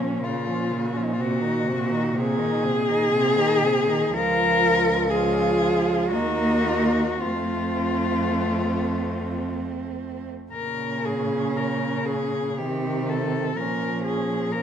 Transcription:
0.00 4.09 A#2 medium
0.00 0.22 F3 soft
0.00 0.21 C#4 soft
0.00 0.26 C#4 medium
0.22 0.49 C#3 medium
0.22 0.49 A#3 medium
0.22 0.89 F4 medium
0.47 0.73 F3 soft
0.47 0.71 C#4 soft
0.69 0.96 C#3 soft
0.69 0.94 A#3 soft
0.88 0.99 F#4 medium
0.93 1.18 F3 soft
0.93 1.17 C#4 medium
0.97 1.06 F4 medium
1.04 1.15 D#4 medium
1.13 1.23 F4 medium
1.18 1.42 C3 soft
1.18 1.43 C4 medium
1.18 2.20 F#4 medium
1.41 1.67 D#3 soft
1.41 1.68 D#4 soft
1.65 1.91 C3 soft
1.65 1.93 C4 soft
1.90 2.14 D#3 soft
1.90 2.15 D#4 soft
2.14 2.40 C3 medium
2.14 2.40 C4 medium
2.14 4.15 G#4 loud
2.38 2.66 D#3 medium
2.38 2.65 D#4 medium
2.63 2.90 C3 soft
2.63 2.90 C4 medium
2.89 3.11 D#3 soft
2.89 3.12 D#4 medium
3.12 3.38 C3 medium
3.12 3.40 C4 medium
3.36 3.64 D#3 medium
3.36 3.66 D#4 medium
3.63 3.88 C3 medium
3.63 3.90 C4 medium
3.87 4.11 D#3 medium
3.87 4.13 D#4 medium
4.12 6.16 C#2 medium
4.12 5.06 F3 medium
4.12 5.07 F4 medium
4.12 5.11 A#4 loud
5.10 6.14 F3 medium
5.10 6.15 F4 medium
5.10 6.11 G#4 medium
6.11 7.24 D#2 medium
6.11 7.24 A#3 medium
6.11 7.22 D#4 medium
6.11 7.23 F#4 loud
7.22 10.32 F2 medium
7.22 10.32 A3 medium
7.22 10.28 C4 medium
7.22 9.44 F4 medium
10.52 12.61 A#2 medium
10.52 12.61 C#3 medium
10.52 12.56 C#4 medium
10.52 11.07 A#4 medium
11.06 11.58 G#4 medium
11.56 12.07 A#4 medium
12.06 12.60 G#4 medium
12.58 13.58 C3 medium
12.58 13.57 D#3 medium
12.58 13.61 C4 medium
12.58 13.10 G4 medium
13.09 13.59 A4 medium
13.57 14.62 A#2 medium
13.57 14.62 F3 medium
13.57 14.54 C#4 soft
13.57 14.05 A#4 medium
14.05 14.54 G#4 medium
14.52 14.62 C#4 medium
14.52 14.62 A#4 medium

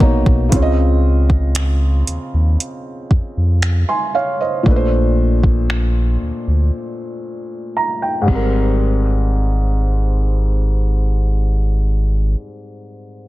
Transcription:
0.00 0.24 A#1 medium
0.00 0.51 B2 medium
0.00 0.52 A#3 medium
0.00 0.53 D#4 medium
0.00 0.53 C#5 medium
0.00 kick loud
0.26 0.50 B1 medium
0.26 kick loud
0.49 2.03 C#2 loud
0.49 4.60 C#3 medium
0.49 4.62 C4 medium
0.49 kick loud
0.49 closed hi-hat medium
0.54 4.63 F4 medium
0.54 0.60 C#5 medium
0.62 3.64 D#5 medium
1.30 kick medium
1.55 finger snap loud
1.55 closed hi-hat medium
2.07 2.18 D#2 soft
2.07 closed hi-hat medium
2.34 2.57 D#2 medium
2.60 closed hi-hat medium
3.11 3.21 F2 soft
3.11 kick medium
3.37 3.85 F2 medium
3.62 finger snap loud
3.62 closed hi-hat medium
3.89 4.13 G#5 medium
3.89 4.13 C6 medium
4.15 4.39 C#5 medium
4.15 4.39 F5 medium
4.41 4.75 C5 medium
4.41 4.89 D#5 medium
4.63 6.17 A#1 loud
4.63 8.23 A#2 medium
4.63 8.24 A3 medium
4.63 kick loud
4.67 8.25 D4 medium
4.67 4.74 B4 medium
4.76 8.29 C5 medium
5.43 kick medium
5.70 finger snap loud
6.22 6.32 D2 soft
6.48 6.71 D2 medium
7.77 8.00 A#5 medium
8.02 8.26 G5 medium
8.22 12.29 G#2 medium
8.26 12.35 G#1 loud
8.26 12.33 G3 medium
8.26 kick medium
8.26 crash medium
8.30 12.38 C4 medium
8.35 12.42 A#4 medium

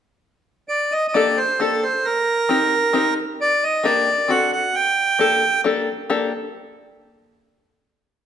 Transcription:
0.69 0.93 D5 medium
0.92 1.07 D#5 medium
1.08 1.15 D#5 medium
1.13 1.38 A#3 soft
1.13 1.38 D4 soft
1.13 1.39 G4 medium
1.13 1.39 A4 medium
1.13 1.39 D5 medium
1.37 1.61 C5 medium
1.59 1.83 A#3 soft
1.59 1.84 D4 soft
1.59 1.84 G4 soft
1.59 1.84 A4 medium
1.59 1.84 A4 soft
1.83 2.06 C5 medium
2.05 3.14 A#4 medium
2.49 2.73 C4 soft
2.49 2.73 D#4 soft
2.49 2.74 G4 soft
2.49 2.74 A#4 medium
2.93 3.17 C4 medium
2.93 3.18 D#4 medium
2.93 3.18 G4 soft
2.93 3.18 A#4 medium
3.41 3.64 D5 medium
3.64 3.86 D#5 medium
3.83 4.07 A#3 medium
3.83 4.08 D4 medium
3.83 4.08 G4 soft
3.83 4.08 A#4 medium
3.83 4.31 D5 medium
4.28 4.52 C4 soft
4.28 4.52 D4 soft
4.28 4.53 F#4 soft
4.28 4.53 A4 soft
4.28 4.51 F#5 medium
4.53 4.75 F#5 medium
4.75 5.61 G5 medium
5.19 5.43 A#3 soft
5.19 5.43 D4 soft
5.19 5.43 G4 soft
5.19 5.43 A4 medium
5.64 5.88 A#3 medium
5.64 5.88 D4 medium
5.64 5.89 G4 soft
5.64 5.89 A4 medium
6.10 6.32 A#3 medium
6.10 6.32 D4 soft
6.10 6.32 G4 medium
6.10 6.32 A4 medium

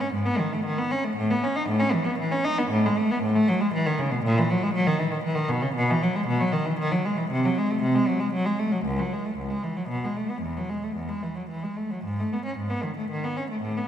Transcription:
0.01 0.13 C#4 medium
0.13 0.26 G#2 medium
0.26 0.39 B3 medium
0.39 0.52 D#3 medium
0.53 0.65 A3 medium
0.65 0.78 D#3 medium
0.78 0.91 B3 medium
0.91 1.04 C#4 medium
1.04 1.17 A3 medium
1.16 1.29 A2 medium
1.31 1.43 B3 medium
1.44 1.55 C#4 medium
1.56 1.68 D#4 medium
1.68 1.80 A2 medium
1.80 1.92 C#4 medium
1.93 2.05 E3 medium
2.06 2.18 B3 medium
2.18 2.31 E3 medium
2.32 2.44 C#4 medium
2.44 2.57 D#4 medium
2.58 2.71 B3 medium
2.71 2.83 A2 loud
2.86 2.98 G#3 medium
2.98 3.10 A3 medium
3.11 3.23 B3 medium
3.23 3.34 A2 medium
3.36 3.48 A3 medium
3.48 3.60 F#3 medium
3.61 3.73 G#3 medium
3.74 3.85 E3 medium
3.86 3.98 D#3 medium
3.99 4.11 C#3 medium
4.11 4.23 B2 medium
4.24 4.36 A#2 loud
4.38 4.49 E3 medium
4.51 4.62 F#3 medium
4.63 4.75 G#3 medium
4.74 4.86 F#3 loud
4.87 4.99 D#3 medium
4.99 5.11 E3 medium
5.12 5.24 D#3 medium
5.24 5.36 E3 loud
5.35 5.48 D#3 medium
5.49 5.62 B2 medium
5.62 5.76 C#3 medium
5.75 5.88 B2 loud
5.91 6.03 E3 medium
6.03 6.15 F#3 medium
6.16 6.28 G#3 medium
6.27 6.40 B2 medium
6.40 6.53 F#3 medium
6.53 6.66 D#3 medium
6.66 6.79 E3 medium
6.79 6.91 D#3 medium
6.91 7.04 F#3 medium
7.05 7.17 G#3 medium
7.18 7.30 E3 medium
7.30 7.42 C3 medium
7.45 7.56 F#3 medium
7.58 7.69 G#3 medium
7.71 7.82 A3 medium
7.82 7.94 C3 medium
7.95 8.07 G#3 medium
8.08 8.20 F#3 medium
8.20 8.33 G#3 medium
8.33 8.45 F#3 medium
8.46 8.58 G#3 medium
8.59 8.72 A3 medium
8.72 8.85 F#3 medium
8.85 8.98 C#2 medium
8.99 9.12 F#3 medium
9.13 9.25 G#3 medium
9.26 9.38 A3 medium
9.37 9.50 C#2 medium
9.50 9.63 G#3 medium
9.63 9.76 E3 medium
9.77 9.89 F#3 medium
9.89 10.01 B2 medium
10.04 10.16 G#3 medium
10.17 10.29 A3 medium
10.30 10.42 B3 medium
10.41 10.54 E2 medium
10.57 10.69 F#3 medium
10.70 10.82 G#3 medium
10.84 10.96 A3 medium
10.96 11.09 E2 medium
11.09 11.22 G#3 medium
11.23 11.36 E3 medium
11.36 11.49 F#3 soft
11.49 11.62 E3 medium
11.63 11.77 G#3 soft
11.76 11.90 A3 soft
11.90 12.04 F#3 soft
12.04 12.18 G#2 medium
12.20 12.32 A3 medium
12.33 12.45 B3 medium
12.45 12.57 C#4 medium
12.57 12.70 G#2 medium
12.70 12.83 B3 medium
12.83 12.96 D#3 medium
12.97 13.09 A3 medium
13.10 13.22 D#3 medium
13.24 13.36 B3 medium
13.36 13.49 C#4 medium
13.50 13.62 A3 medium
13.62 13.74 A2 medium
13.77 13.88 B3 medium

